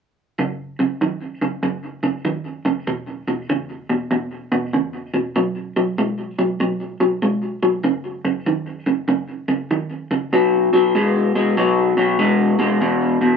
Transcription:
0.39 F#2 C#3
0.79 F#2 C#3
1.01 F#2 D#3
1.42 F#2 C#3
1.63 F#2 C#3
2.03 F#2 C#3
2.25 F#2 D#3
2.65 F#2 C#3
2.87 E2 B2
3.28 E2 B2
3.50 E2 C#3
3.90 E2 B2
4.11 E2 B2
4.52 E2 B2
4.73 E2 C#3
5.14 E2 B2
5.36 B2 F#3
5.76 B2 F#3
5.98 B2 G#3
6.39 B2 F#3
6.60 B2 F#3
7.00 B2 F#3
7.22 B2 G#3
7.63 B2 F#3
7.84 F#2 C#3
8.25 F#2 C#3
8.46 F#2 D#3
8.86 F#2 C#3
9.08 F#2 C#3
9.48 F#2 C#3
9.71 F#2 D#3
10.11 F#2 C#3
10.33 B2 F#3
10.73 B2 F#3
10.95 B2 G#3
11.35 B2 G#3
11.57 B2 F#3
11.97 B2 F#3
12.19 B2 G#3
12.59 B2 G#3
12.81 E2 B2
13.21 E2 B2

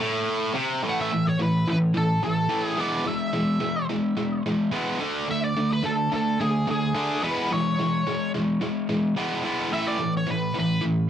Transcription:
0.00 A2
0.55 C3
0.83 A2 E3 A3
0.89 F#5
1.01 E5
1.12 A2 E3
1.27 C#5
1.39 A2 E3 B4
1.68 A2 E3 B4
1.94 A2 E3 A4
2.23 A2 E3 A4
2.49 A2 E3 A3
2.65 G#4
2.77 E3 G#3 B3 D5
3.04 E3 G#3 E5
3.33 E3 G#3
3.60 E3 G#3
3.90 E3 G#3
4.17 E3 G#3
4.46 E3 G#3
4.72 E3 G#3 B3
5.01 D3 A3 D4
5.29 D3 A3 E5
5.44 D5
5.57 D3 A3
5.72 B4
5.83 D3 A3 A4
6.12 D3 A3 A4
6.40 D3 A3 G#4
6.67 D3 A3 G#4
6.95 D3 A3 D4
7.22 E3 G#3 B3 B4
7.52 E3 G#3 C#5
7.80 E3 G#3
8.07 E3 G#3
8.34 E3 G#3
8.61 E3 G#3
8.89 E3 G#3
9.17 E3 G#3 B3
9.44 E3 G#3 B3
9.72 A2 E3 A3 E5
9.88 D5
9.99 A2 E3
10.17 C#5
10.27 A2 E3 B4
10.54 A2 E3
10.60 B4
10.81 A2 E3

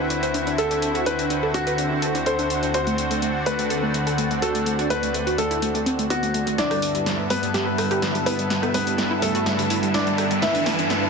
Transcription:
Already playing: D2 D3 C4 E4 F#4 B4
0.10 D4, closed hi-hat
0.23 C5, closed hi-hat
0.34 D4, closed hi-hat
0.47 D4, closed hi-hat
0.58 A4, closed hi-hat
0.71 D4, closed hi-hat
0.82 D4, closed hi-hat
0.95 F#4, closed hi-hat
1.06 D4 B4, closed hi-hat
1.19 D4, closed hi-hat
1.30 D4, closed hi-hat
1.43 A4
1.54 D4 F#4, closed hi-hat
1.67 B4, closed hi-hat
1.78 D4, closed hi-hat
1.91 D4
2.02 A4, closed hi-hat
2.15 D4, closed hi-hat
2.26 A4 C5, closed hi-hat
2.39 D4, closed hi-hat
2.50 D4, closed hi-hat
2.63 D4, closed hi-hat
2.74 D4 F#4 C5, closed hi-hat
2.87 A3, closed hi-hat
2.98 closed hi-hat
3.11 A3, closed hi-hat
3.22 A3, closed hi-hat
3.46 A3 B4, closed hi-hat
3.59 A3, closed hi-hat
3.70 A4, closed hi-hat
3.83 A3
3.94 A3, closed hi-hat
4.07 A4, closed hi-hat
4.18 A3, closed hi-hat
4.31 A3, closed hi-hat
4.42 F#4 A4, closed hi-hat
4.55 A3, closed hi-hat
4.66 A3, closed hi-hat
4.79 D4, closed hi-hat
4.90 A3 B4, closed hi-hat
5.03 A3, closed hi-hat
5.14 A3, closed hi-hat
5.27 F#4, closed hi-hat
5.38 A3 A4, closed hi-hat
5.51 E4, closed hi-hat
5.62 A3, closed hi-hat
5.75 A3, closed hi-hat
5.86 C4, closed hi-hat
5.99 A3, closed hi-hat
6.10 B3 F#4, closed hi-hat
6.23 A3, closed hi-hat
6.34 A3, closed hi-hat
6.47 A3, closed hi-hat
6.58 G2 D3 B3 D4 E4 A4 D5, snare, closed hi-hat, riser
6.71 G3, cross-stick, open hi-hat
6.82 open hi-hat
6.95 G3, closed hi-hat
7.06 G3, snare, closed hi-hat
7.30 G3 B3 B4, open hi-hat
7.43 G3, closed hi-hat
7.54 G4, snare, closed hi-hat
7.67 G3
7.78 G3, cross-stick, open hi-hat
7.91 G4, cross-stick, closed hi-hat
8.02 G3, snare, closed hi-hat
8.15 G3, closed hi-hat
8.26 B3 E4 B4, open hi-hat
8.39 G3, closed hi-hat
8.50 G3, snare, closed hi-hat
8.63 B3, cross-stick, closed hi-hat
8.74 G3 B3 B4, open hi-hat
8.87 G3, closed hi-hat
8.98 G3, snare, closed hi-hat
9.11 E4
9.22 G3 A3 A4, open hi-hat
9.35 F#4, closed hi-hat
9.46 G3, snare, closed hi-hat
9.59 G3, open hi-hat
9.70 E4, open hi-hat
9.83 G3, closed hi-hat
9.94 D4 E4 D5, snare, closed hi-hat
10.07 G3, closed hi-hat
10.18 G3, cross-stick, open hi-hat
10.31 G3, closed hi-hat
10.42 E4 B4 E5, snare, closed hi-hat
10.55 D4, open hi-hat
10.66 snare, open hi-hat
10.79 D4, closed hi-hat
10.90 D4, snare, closed hi-hat

